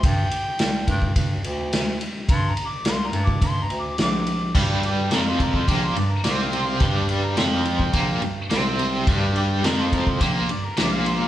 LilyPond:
<<
  \new Staff \with { instrumentName = "Harmonica" } { \time 4/4 \key g \minor \tempo 4 = 106 g''2 r2 | \tuplet 3/2 { c'''8 bes''8 d'''8 c'''8 bes''8 d'''8 c'''8 bes''8 d'''8 } d'''4 | r8 g'8 bes'16 f'16 bes'16 c''16 g'16 c''16 d''16 bes'16 d''16 f''16 c''16 f''16 | g''16 d''16 g''16 bes''16 g''2 r4 |
r8 g'8 bes'16 f'16 bes'16 c''16 g'16 c''16 d''16 bes'16 d''16 f''16 c''16 f''16 | }
  \new Staff \with { instrumentName = "Overdriven electric guitar" } { \clef bass \time 4/4 \key g \minor r1 | r1 | <g, g>4 <f, f>4 <bes, bes>8 g,8 <c c'>4 | <g, g>4 <f, f>4 <bes, bes>8 g,8 <c c'>4 |
<g, g>4 <f, f>4 <bes, bes>8 g,8 <bes, bes>4 | }
  \new Staff \with { instrumentName = "Bass clarinet" } { \clef bass \time 4/4 \key g \minor g,8 g,8 c,8 g,8 g,8 d,4 r8 | g,8 g,8 c,8 g,8 g,8 d,8 bes,,4 | g,4 f,4 bes,,8 g,8 c,4 | g,4 f,4 bes,,8 g,8 c,4 |
g,4 f,4 bes,,8 r8 bes,,4 | }
  \new DrumStaff \with { instrumentName = "Drums" } \drummode { \time 4/4 <bd cymr>8 cymr8 <cymr sn>8 <bd cymr>16 bd16 <bd cymr>8 cymr8 <cymr sn>8 cymr8 | <bd cymr>8 cymr8 <cymr sn>8 cymr16 bd16 <bd cymr>8 cymr8 <cymr sn>8 cymr8 | <cymc bd>8 cymr8 <cymr sn>8 <bd cymr>16 bd16 <bd cymr>8 cymr8 <cymr sn>8 cymr8 | <bd cymr>8 cymr8 <cymr sn>8 cymr16 bd16 <bd cymr>8 cymr8 <cymr sn>8 cymr8 |
<bd cymr>8 cymr8 <cymr sn>8 <bd cymr>16 bd16 <bd cymr>8 cymr8 <cymr sn>8 cymr8 | }
>>